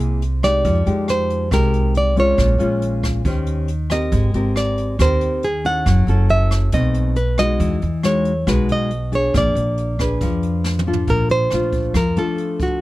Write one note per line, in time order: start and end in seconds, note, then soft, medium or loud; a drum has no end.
0.00 0.61 C2 medium
0.00 0.63 C3 medium
0.00 0.21 A#3 medium
0.00 0.21 E4 soft
0.00 0.22 G#4 medium
0.22 closed hi-hat soft
0.43 0.83 G#3 medium
0.43 0.83 D#4 medium
0.43 0.84 G4 medium
0.43 1.10 D5 medium
0.43 cross-stick medium
0.43 closed hi-hat soft
0.65 0.85 F2 medium
0.65 1.50 F3 soft
0.65 kick medium
0.65 closed hi-hat soft
0.86 1.48 F2 medium
0.86 1.48 G#3 medium
0.86 1.48 D#4 medium
0.86 1.48 G4 medium
0.86 closed hi-hat soft
1.08 1.50 C5 medium
1.08 cross-stick medium
1.08 closed hi-hat soft
1.30 closed hi-hat soft
1.51 2.34 C2 medium
1.51 2.37 C3 medium
1.51 2.13 G#3 medium
1.51 2.14 D#4 soft
1.51 2.14 G4 medium
1.51 1.97 A#4 medium
1.51 kick medium
1.51 cross-stick medium
1.51 closed hi-hat medium
1.74 closed hi-hat soft
1.95 2.19 D5 medium
1.95 closed hi-hat soft
2.16 2.56 G#3 soft
2.16 2.57 C#4 medium
2.16 2.57 F4 medium
2.16 3.45 C#5 medium
2.16 closed hi-hat soft
2.38 2.59 A#1 medium
2.38 3.23 A#2 soft
2.38 kick medium
2.38 cross-stick soft
2.38 closed hi-hat soft
2.58 3.22 A#1 medium
2.58 3.21 G#3 medium
2.58 3.21 C#4 medium
2.58 3.22 F4 medium
2.58 closed hi-hat soft
2.82 closed hi-hat soft
3.03 kick soft
3.03 cross-stick medium
3.03 closed hi-hat soft
3.25 4.08 D#2 medium
3.25 4.10 D#3 soft
3.25 3.68 C#4 medium
3.25 3.69 G4 medium
3.25 3.69 C5 medium
3.25 kick medium
3.25 closed hi-hat medium
3.47 closed hi-hat soft
3.68 closed hi-hat soft
3.90 4.30 C4 medium
3.90 4.31 G4 medium
3.90 4.31 A#4 medium
3.90 4.57 D#5 medium
3.90 cross-stick medium
3.90 closed hi-hat soft
4.12 4.32 G#1 medium
4.12 4.97 G#3 soft
4.12 kick medium
4.12 closed hi-hat soft
4.34 4.95 G#1 medium
4.34 4.96 C4 medium
4.34 4.96 G4 soft
4.34 4.96 A#4 medium
4.34 closed hi-hat soft
4.56 5.01 D5 medium
4.56 cross-stick medium
4.56 closed hi-hat soft
4.78 closed hi-hat soft
4.99 5.82 D#2 medium
4.99 5.84 D#3 medium
4.99 5.43 C4 medium
4.99 5.43 G4 medium
4.99 5.43 A#4 medium
4.99 5.45 C5 medium
4.99 kick medium
4.99 cross-stick medium
4.99 closed hi-hat soft
5.21 closed hi-hat soft
5.43 5.66 G#4 medium
5.43 closed hi-hat soft
5.65 6.04 C#4 medium
5.65 6.05 E4 medium
5.65 6.05 A4 medium
5.65 6.30 F#5 medium
5.65 closed hi-hat soft
5.86 6.06 F#1 medium
5.86 6.71 F#3 soft
5.86 kick soft
5.86 cross-stick medium
5.86 closed hi-hat soft
6.07 6.68 F#1 medium
6.07 6.70 C#4 medium
6.07 6.70 E4 medium
6.07 6.70 A4 medium
6.07 closed hi-hat soft
6.29 6.74 E5 medium
6.29 closed hi-hat soft
6.51 cross-stick medium
6.51 closed hi-hat soft
6.72 7.56 B1 medium
6.72 7.58 B2 medium
6.72 7.16 A3 medium
6.72 7.16 C4 medium
6.72 7.16 D#4 medium
6.72 7.18 D#5 medium
6.72 kick medium
6.72 closed hi-hat medium
6.94 closed hi-hat soft
7.16 7.39 B4 medium
7.16 closed hi-hat soft
7.38 7.78 G#3 medium
7.38 7.79 D#4 medium
7.38 7.79 F#4 medium
7.38 8.05 D#5 medium
7.38 cross-stick medium
7.38 closed hi-hat soft
7.60 7.80 E2 medium
7.60 8.45 E3 soft
7.60 kick medium
7.60 closed hi-hat medium
7.82 8.43 E2 medium
7.82 closed hi-hat soft
8.03 8.31 G#3 medium
8.03 8.31 D#4 medium
8.03 8.32 F#4 medium
8.03 8.49 C#5 medium
8.03 cross-stick medium
8.03 closed hi-hat soft
8.25 closed hi-hat soft
8.47 9.30 B1 medium
8.47 9.31 B2 medium
8.47 8.90 G#3 medium
8.47 8.90 D#4 soft
8.47 8.90 F#4 medium
8.47 8.70 B4 medium
8.47 kick medium
8.47 cross-stick medium
8.47 closed hi-hat medium
8.69 9.15 D#5 medium
8.69 closed hi-hat soft
8.91 closed hi-hat soft
9.12 9.95 D4 medium
9.12 9.96 G#4 medium
9.12 9.36 C#5 medium
9.12 closed hi-hat soft
9.34 9.54 A#1 medium
9.34 10.19 A#3 soft
9.34 10.62 D5 medium
9.34 kick medium
9.34 cross-stick soft
9.34 closed hi-hat soft
9.55 10.16 A#1 medium
9.55 closed hi-hat soft
9.78 closed hi-hat soft
9.99 10.83 D4 medium
9.99 10.83 G#4 medium
9.99 10.83 B4 medium
9.99 kick soft
9.99 cross-stick medium
9.99 closed hi-hat soft
10.21 11.04 F2 medium
10.21 11.06 F3 medium
10.21 kick medium
10.21 closed hi-hat medium
10.43 closed hi-hat soft
10.64 snare soft
10.79 mid tom soft
10.87 11.48 D4 medium
10.87 11.48 F4 medium
10.87 11.48 A4 medium
10.93 floor tom medium
11.07 11.48 A#1 medium
11.07 11.92 A#2 soft
11.07 11.31 A#4 medium
11.07 kick soft
11.07 closed hi-hat soft
11.29 11.96 C5 medium
11.29 closed hi-hat soft
11.50 11.91 A#1 medium
11.50 11.95 A3 soft
11.50 11.95 D4 soft
11.50 11.95 F4 medium
11.50 cross-stick soft
11.50 closed hi-hat soft
11.72 kick soft
11.72 closed hi-hat soft
11.94 12.14 F2 medium
11.94 12.79 F3 medium
11.94 12.18 A#4 medium
11.94 kick medium
11.94 cross-stick medium
11.94 closed hi-hat soft
12.16 12.78 A3 medium
12.16 12.78 D4 medium
12.16 12.79 F4 medium
12.16 12.62 A4 medium
12.16 closed hi-hat soft
12.38 closed hi-hat soft
12.60 12.81 F#4 medium
12.60 kick soft
12.60 closed hi-hat soft